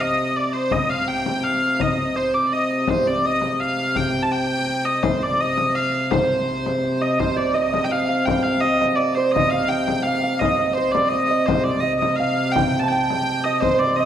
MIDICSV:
0, 0, Header, 1, 5, 480
1, 0, Start_track
1, 0, Tempo, 359066
1, 949, Time_signature, 3, 2, 24, 8
1, 18786, End_track
2, 0, Start_track
2, 0, Title_t, "Harp"
2, 0, Program_c, 0, 46
2, 9377, Note_on_c, 0, 75, 56
2, 9624, Note_on_c, 0, 72, 64
2, 9844, Note_on_c, 0, 74, 54
2, 9924, Note_off_c, 0, 75, 0
2, 10090, Note_on_c, 0, 75, 63
2, 10170, Note_off_c, 0, 74, 0
2, 10321, Note_off_c, 0, 75, 0
2, 10326, Note_on_c, 0, 75, 61
2, 10586, Note_on_c, 0, 77, 67
2, 10807, Note_off_c, 0, 77, 0
2, 10812, Note_on_c, 0, 77, 64
2, 11070, Note_on_c, 0, 79, 70
2, 11292, Note_off_c, 0, 77, 0
2, 11297, Note_on_c, 0, 77, 63
2, 11544, Note_off_c, 0, 75, 0
2, 11549, Note_on_c, 0, 75, 62
2, 11774, Note_off_c, 0, 75, 0
2, 11780, Note_on_c, 0, 75, 65
2, 12023, Note_on_c, 0, 74, 62
2, 12103, Note_off_c, 0, 75, 0
2, 12255, Note_off_c, 0, 72, 0
2, 12260, Note_on_c, 0, 72, 61
2, 12522, Note_on_c, 0, 75, 70
2, 12602, Note_off_c, 0, 74, 0
2, 12743, Note_off_c, 0, 77, 0
2, 12749, Note_on_c, 0, 77, 66
2, 12968, Note_off_c, 0, 79, 0
2, 12973, Note_on_c, 0, 79, 71
2, 13453, Note_off_c, 0, 77, 0
2, 13459, Note_on_c, 0, 77, 75
2, 13676, Note_off_c, 0, 77, 0
2, 13681, Note_on_c, 0, 77, 64
2, 13943, Note_off_c, 0, 75, 0
2, 13948, Note_on_c, 0, 75, 69
2, 14400, Note_off_c, 0, 72, 0
2, 14406, Note_on_c, 0, 72, 65
2, 14641, Note_on_c, 0, 74, 68
2, 14722, Note_off_c, 0, 75, 0
2, 14870, Note_on_c, 0, 75, 69
2, 14950, Note_off_c, 0, 74, 0
2, 15049, Note_off_c, 0, 79, 0
2, 15106, Note_off_c, 0, 75, 0
2, 15111, Note_on_c, 0, 75, 66
2, 15336, Note_off_c, 0, 72, 0
2, 15341, Note_on_c, 0, 72, 66
2, 15804, Note_off_c, 0, 75, 0
2, 15809, Note_on_c, 0, 75, 71
2, 15906, Note_off_c, 0, 77, 0
2, 16066, Note_off_c, 0, 75, 0
2, 16071, Note_on_c, 0, 75, 65
2, 16306, Note_on_c, 0, 77, 73
2, 16789, Note_on_c, 0, 79, 73
2, 17156, Note_on_c, 0, 81, 71
2, 17261, Note_off_c, 0, 79, 0
2, 17266, Note_on_c, 0, 79, 69
2, 17979, Note_off_c, 0, 75, 0
2, 17984, Note_on_c, 0, 75, 69
2, 17987, Note_off_c, 0, 72, 0
2, 18214, Note_on_c, 0, 72, 70
2, 18366, Note_off_c, 0, 72, 0
2, 18371, Note_on_c, 0, 72, 64
2, 18531, Note_off_c, 0, 77, 0
2, 18539, Note_off_c, 0, 72, 0
2, 18544, Note_on_c, 0, 72, 66
2, 18711, Note_off_c, 0, 75, 0
2, 18717, Note_on_c, 0, 75, 71
2, 18786, Note_off_c, 0, 72, 0
2, 18786, Note_off_c, 0, 75, 0
2, 18786, Note_off_c, 0, 79, 0
2, 18786, Note_off_c, 0, 81, 0
2, 18786, End_track
3, 0, Start_track
3, 0, Title_t, "Hurdy-gurdy"
3, 0, Program_c, 1, 110
3, 7, Note_on_c, 1, 75, 79
3, 485, Note_off_c, 1, 75, 0
3, 485, Note_on_c, 1, 74, 78
3, 705, Note_on_c, 1, 72, 68
3, 717, Note_off_c, 1, 74, 0
3, 962, Note_off_c, 1, 72, 0
3, 962, Note_on_c, 1, 75, 74
3, 1198, Note_off_c, 1, 75, 0
3, 1198, Note_on_c, 1, 77, 75
3, 1440, Note_off_c, 1, 77, 0
3, 1440, Note_on_c, 1, 79, 84
3, 1919, Note_off_c, 1, 79, 0
3, 1919, Note_on_c, 1, 77, 82
3, 2414, Note_off_c, 1, 77, 0
3, 2414, Note_on_c, 1, 75, 78
3, 2889, Note_off_c, 1, 75, 0
3, 2889, Note_on_c, 1, 72, 74
3, 3124, Note_off_c, 1, 72, 0
3, 3124, Note_on_c, 1, 74, 64
3, 3378, Note_off_c, 1, 74, 0
3, 3378, Note_on_c, 1, 75, 80
3, 3624, Note_off_c, 1, 75, 0
3, 3624, Note_on_c, 1, 75, 71
3, 3861, Note_off_c, 1, 75, 0
3, 3861, Note_on_c, 1, 72, 76
3, 4106, Note_off_c, 1, 72, 0
3, 4106, Note_on_c, 1, 74, 79
3, 4347, Note_off_c, 1, 74, 0
3, 4347, Note_on_c, 1, 75, 81
3, 4817, Note_off_c, 1, 75, 0
3, 4817, Note_on_c, 1, 77, 84
3, 5303, Note_off_c, 1, 77, 0
3, 5303, Note_on_c, 1, 79, 78
3, 5648, Note_on_c, 1, 81, 86
3, 5654, Note_off_c, 1, 79, 0
3, 5771, Note_off_c, 1, 81, 0
3, 5771, Note_on_c, 1, 79, 95
3, 6484, Note_off_c, 1, 79, 0
3, 6484, Note_on_c, 1, 75, 83
3, 6719, Note_on_c, 1, 72, 77
3, 6726, Note_off_c, 1, 75, 0
3, 6989, Note_off_c, 1, 72, 0
3, 6989, Note_on_c, 1, 74, 84
3, 7228, Note_off_c, 1, 74, 0
3, 7228, Note_on_c, 1, 75, 83
3, 7683, Note_off_c, 1, 75, 0
3, 7683, Note_on_c, 1, 77, 82
3, 8169, Note_off_c, 1, 77, 0
3, 8169, Note_on_c, 1, 72, 68
3, 9376, Note_off_c, 1, 72, 0
3, 9376, Note_on_c, 1, 75, 67
3, 9616, Note_off_c, 1, 75, 0
3, 9616, Note_on_c, 1, 72, 70
3, 9845, Note_off_c, 1, 72, 0
3, 9845, Note_on_c, 1, 74, 78
3, 10079, Note_on_c, 1, 75, 75
3, 10088, Note_off_c, 1, 74, 0
3, 10485, Note_off_c, 1, 75, 0
3, 10485, Note_on_c, 1, 79, 59
3, 10575, Note_off_c, 1, 79, 0
3, 10575, Note_on_c, 1, 77, 73
3, 11033, Note_on_c, 1, 79, 78
3, 11052, Note_off_c, 1, 77, 0
3, 11263, Note_on_c, 1, 77, 76
3, 11264, Note_off_c, 1, 79, 0
3, 11504, Note_off_c, 1, 77, 0
3, 11504, Note_on_c, 1, 75, 83
3, 11971, Note_off_c, 1, 75, 0
3, 11971, Note_on_c, 1, 74, 80
3, 12225, Note_off_c, 1, 74, 0
3, 12225, Note_on_c, 1, 72, 73
3, 12452, Note_on_c, 1, 75, 81
3, 12476, Note_off_c, 1, 72, 0
3, 12699, Note_on_c, 1, 77, 82
3, 12709, Note_off_c, 1, 75, 0
3, 12945, Note_on_c, 1, 79, 92
3, 12953, Note_off_c, 1, 77, 0
3, 13401, Note_on_c, 1, 77, 86
3, 13435, Note_off_c, 1, 79, 0
3, 13888, Note_on_c, 1, 75, 78
3, 13902, Note_off_c, 1, 77, 0
3, 14348, Note_on_c, 1, 72, 76
3, 14385, Note_off_c, 1, 75, 0
3, 14590, Note_on_c, 1, 74, 74
3, 14615, Note_off_c, 1, 72, 0
3, 14818, Note_on_c, 1, 75, 79
3, 14856, Note_off_c, 1, 74, 0
3, 15072, Note_off_c, 1, 75, 0
3, 15072, Note_on_c, 1, 75, 76
3, 15316, Note_off_c, 1, 75, 0
3, 15316, Note_on_c, 1, 72, 67
3, 15558, Note_off_c, 1, 72, 0
3, 15558, Note_on_c, 1, 74, 81
3, 15774, Note_off_c, 1, 74, 0
3, 15774, Note_on_c, 1, 75, 88
3, 16006, Note_off_c, 1, 75, 0
3, 16006, Note_on_c, 1, 75, 70
3, 16255, Note_on_c, 1, 77, 90
3, 16261, Note_off_c, 1, 75, 0
3, 16734, Note_off_c, 1, 77, 0
3, 16734, Note_on_c, 1, 79, 88
3, 17101, Note_on_c, 1, 81, 83
3, 17122, Note_off_c, 1, 79, 0
3, 17217, Note_on_c, 1, 79, 94
3, 17236, Note_off_c, 1, 81, 0
3, 17962, Note_off_c, 1, 79, 0
3, 17962, Note_on_c, 1, 75, 83
3, 18186, Note_on_c, 1, 72, 85
3, 18213, Note_off_c, 1, 75, 0
3, 18435, Note_off_c, 1, 72, 0
3, 18435, Note_on_c, 1, 74, 91
3, 18662, Note_on_c, 1, 75, 87
3, 18688, Note_off_c, 1, 74, 0
3, 18786, Note_off_c, 1, 75, 0
3, 18786, End_track
4, 0, Start_track
4, 0, Title_t, "Harmonium"
4, 0, Program_c, 2, 20
4, 0, Note_on_c, 2, 48, 64
4, 3816, Note_off_c, 2, 48, 0
4, 3836, Note_on_c, 2, 48, 68
4, 9602, Note_off_c, 2, 48, 0
4, 9622, Note_on_c, 2, 48, 68
4, 15373, Note_off_c, 2, 48, 0
4, 15393, Note_on_c, 2, 48, 67
4, 18786, Note_off_c, 2, 48, 0
4, 18786, End_track
5, 0, Start_track
5, 0, Title_t, "Frame drum"
5, 471, Note_on_c, 9, 64, 25
5, 605, Note_off_c, 9, 64, 0
5, 952, Note_on_c, 9, 64, 70
5, 1086, Note_off_c, 9, 64, 0
5, 1439, Note_on_c, 9, 64, 22
5, 1572, Note_off_c, 9, 64, 0
5, 1687, Note_on_c, 9, 64, 56
5, 1820, Note_off_c, 9, 64, 0
5, 1938, Note_on_c, 9, 64, 23
5, 2072, Note_off_c, 9, 64, 0
5, 2402, Note_on_c, 9, 64, 68
5, 2536, Note_off_c, 9, 64, 0
5, 2871, Note_on_c, 9, 64, 24
5, 3005, Note_off_c, 9, 64, 0
5, 3843, Note_on_c, 9, 64, 71
5, 3977, Note_off_c, 9, 64, 0
5, 4328, Note_on_c, 9, 64, 22
5, 4461, Note_off_c, 9, 64, 0
5, 4565, Note_on_c, 9, 64, 54
5, 4699, Note_off_c, 9, 64, 0
5, 4814, Note_on_c, 9, 64, 23
5, 4948, Note_off_c, 9, 64, 0
5, 5286, Note_on_c, 9, 64, 63
5, 5419, Note_off_c, 9, 64, 0
5, 5780, Note_on_c, 9, 64, 24
5, 5914, Note_off_c, 9, 64, 0
5, 6239, Note_on_c, 9, 64, 25
5, 6373, Note_off_c, 9, 64, 0
5, 6725, Note_on_c, 9, 64, 80
5, 6858, Note_off_c, 9, 64, 0
5, 7208, Note_on_c, 9, 64, 27
5, 7342, Note_off_c, 9, 64, 0
5, 7453, Note_on_c, 9, 64, 56
5, 7587, Note_off_c, 9, 64, 0
5, 7690, Note_on_c, 9, 64, 25
5, 7824, Note_off_c, 9, 64, 0
5, 8171, Note_on_c, 9, 64, 77
5, 8304, Note_off_c, 9, 64, 0
5, 8662, Note_on_c, 9, 64, 24
5, 8796, Note_off_c, 9, 64, 0
5, 8906, Note_on_c, 9, 64, 59
5, 9039, Note_off_c, 9, 64, 0
5, 9140, Note_on_c, 9, 64, 25
5, 9274, Note_off_c, 9, 64, 0
5, 9622, Note_on_c, 9, 64, 72
5, 9756, Note_off_c, 9, 64, 0
5, 10106, Note_on_c, 9, 64, 26
5, 10240, Note_off_c, 9, 64, 0
5, 10342, Note_on_c, 9, 64, 60
5, 10476, Note_off_c, 9, 64, 0
5, 10583, Note_on_c, 9, 64, 26
5, 10717, Note_off_c, 9, 64, 0
5, 11060, Note_on_c, 9, 64, 74
5, 11193, Note_off_c, 9, 64, 0
5, 11534, Note_on_c, 9, 64, 22
5, 11668, Note_off_c, 9, 64, 0
5, 11781, Note_on_c, 9, 64, 53
5, 11914, Note_off_c, 9, 64, 0
5, 12037, Note_on_c, 9, 64, 23
5, 12170, Note_off_c, 9, 64, 0
5, 12510, Note_on_c, 9, 64, 69
5, 12644, Note_off_c, 9, 64, 0
5, 12976, Note_on_c, 9, 64, 23
5, 13109, Note_off_c, 9, 64, 0
5, 13206, Note_on_c, 9, 64, 59
5, 13339, Note_off_c, 9, 64, 0
5, 13449, Note_on_c, 9, 64, 24
5, 13582, Note_off_c, 9, 64, 0
5, 13919, Note_on_c, 9, 64, 74
5, 14052, Note_off_c, 9, 64, 0
5, 14397, Note_on_c, 9, 64, 24
5, 14530, Note_off_c, 9, 64, 0
5, 14634, Note_on_c, 9, 64, 68
5, 14768, Note_off_c, 9, 64, 0
5, 14885, Note_on_c, 9, 64, 28
5, 15019, Note_off_c, 9, 64, 0
5, 15118, Note_on_c, 9, 64, 25
5, 15252, Note_off_c, 9, 64, 0
5, 15348, Note_on_c, 9, 64, 81
5, 15481, Note_off_c, 9, 64, 0
5, 15839, Note_on_c, 9, 64, 25
5, 15972, Note_off_c, 9, 64, 0
5, 16072, Note_on_c, 9, 64, 63
5, 16206, Note_off_c, 9, 64, 0
5, 16321, Note_on_c, 9, 64, 25
5, 16455, Note_off_c, 9, 64, 0
5, 16786, Note_on_c, 9, 64, 72
5, 16919, Note_off_c, 9, 64, 0
5, 17275, Note_on_c, 9, 64, 23
5, 17408, Note_off_c, 9, 64, 0
5, 17518, Note_on_c, 9, 64, 59
5, 17652, Note_off_c, 9, 64, 0
5, 17752, Note_on_c, 9, 64, 23
5, 17886, Note_off_c, 9, 64, 0
5, 18211, Note_on_c, 9, 64, 66
5, 18344, Note_off_c, 9, 64, 0
5, 18700, Note_on_c, 9, 64, 24
5, 18786, Note_off_c, 9, 64, 0
5, 18786, End_track
0, 0, End_of_file